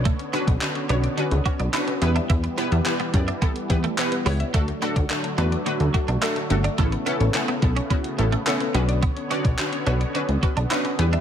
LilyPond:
<<
  \new Staff \with { instrumentName = "Synth pluck" } { \time 4/4 \key b \minor \tempo 4 = 107 <cis' d' fis' b'>8 <cis' d' fis' b'>16 r16 <cis' d' fis' b'>16 r16 <cis' d' fis' cis''>16 r16 <cis' d' fis' b'>16 r16 <cis' d' fis' cis''>16 r16 <cis' d' fis' b'>16 r16 <b e' g' b'>8~ | <b e' g' b'>8 <b e' g' b'>16 r16 <b e' g' b'>16 r16 <b e' g' d''>16 r16 <b e' g' a'>16 r16 <b e' g' b'>16 r16 <b e' g' b'>16 r16 <b e' g' cis''>16 r16 | <a d' fis' a'>16 r16 <a d' fis' a'>16 r16 <a d' fis' a'>16 r16 <a d' fis' b'>16 r16 <a d' fis' b'>16 r16 <a d' fis' a'>16 r16 <a d' fis' a'>16 r16 <a d' fis' a'>16 r16 | <b cis' e' a'>16 r16 <b cis' e' a'>16 r16 <b cis' e' a'>16 r16 <b cis' e' a'>16 r16 <b cis' e' fis'>16 r16 <b cis' e' a'>16 r16 <b cis' e' a'>16 r16 <cis' d' fis' b'>8~ |
<cis' d' fis' b'>8 <cis' d' fis' d''>16 r16 <cis' d' fis' b'>16 r16 <cis' d' fis' b'>16 r16 <cis' d' fis' b'>16 r16 <cis' d' fis' b'>16 r16 <cis' d' fis' b'>16 r16 <b e' g' b'>8 | }
  \new Staff \with { instrumentName = "Synth arpeggio sound" } { \time 4/4 \key b \minor d16 cis'16 b'16 d''16 d16 cis'16 b'16 d''16 d16 r16 b'16 r8 cis'16 r16 e''16 | e16 b16 g'16 e''16 e16 b16 g'16 e''16 e16 r16 g'16 r8 b16 r16 e''16 | d16 a16 fis'16 d''16 d16 a16 fis'16 d''16 d16 r16 fis'16 r8 a16 r16 d''16 | cis16 b16 a'16 cis''16 cis16 b16 a'16 cis''16 cis16 r16 a'16 r8 b16 r16 d''16 |
d16 cis'16 b'16 d''16 d16 cis'16 b'16 d''16 d16 r16 b'16 r8 cis'16 r16 e''16 | }
  \new Staff \with { instrumentName = "Clean electric guitar" } { \time 4/4 \key b \minor a16 r16 b16 r8. d'16 r8. fis'16 d'16 e'16 r8 d'16 | e'16 r16 b16 r8 b16 r16 d'16 b16 r8 a16 r8 b16 r16 | a16 r16 b16 r8. d'16 r8. fis'16 d'16 e'16 r8 d'16 | a16 r16 b16 r8 b16 r16 cis'16 b16 r8 a16 r8 b16 r16 |
b16 r16 cis'16 r8. d'16 r8. fis'16 d'16 e'16 r8 d'16 | }
  \new Staff \with { instrumentName = "Supersaw synth" } { \clef bass \time 4/4 \key b \minor <d b cis''>2.~ <d b cis''>8 <e g>8~ | <e g>1 | <d fis a>1 | <cis b>2.~ <cis b>8 <d cis''>8~ |
<d cis''>2.~ <d cis''>8 <e g>8 | }
  \new Staff \with { instrumentName = "Analog synth bass" } { \clef bass \time 4/4 \key b \minor b,,8 r16 b,,16 r8 b,,8 r16 cis,16 r16 b,,16 r8 e,8 | e,8 r16 e,16 r8 fis,8 r8 e,8 r8 cis,8 | d,8 r16 d,16 r8 e,8 r16 d,16 r16 b,,16 r8 g,,8 | a,,8 r16 a,,16 r8 b,,8 r8 a,,8 r8 b,,8~ |
b,,8 r16 b,,16 r8 b,,8 r16 cis,16 r16 b,,16 r8 e,8 | }
  \new DrumStaff \with { instrumentName = "Drums" } \drummode { \time 4/4 <hh bd>16 hh16 hh16 <hh bd>16 <hc hh>16 hh16 hh16 hh16 hh16 hh16 <hh bd>16 hh16 <hc hh>16 hh16 hh16 hh16 | <hh bd>16 hh16 hh16 hh16 <hc hh>16 hh16 <hh bd>16 hh16 <hh bd>16 hh16 <hh bd>16 hh16 <hc hh>16 hh16 hho16 hh16 | <hh bd>16 hh16 hh16 <hh bd>16 <hc hh>16 hh16 hh16 hh16 hh16 hh16 <hh bd>16 hh16 <hc hh>16 hh16 hh16 hh16 | <hh bd>16 hh16 hh16 hh16 <hc hh>16 hh16 <hh bd>16 hh16 <hh bd>16 hh16 hh16 hh16 <hc hh>16 hh16 hh16 hh16 |
<hh bd>16 hh16 hh16 <hh bd>16 <hc hh>16 hh16 hh16 hh16 hh16 hh16 <hh bd>16 hh16 <hc hh>16 hh16 hh16 hh16 | }
>>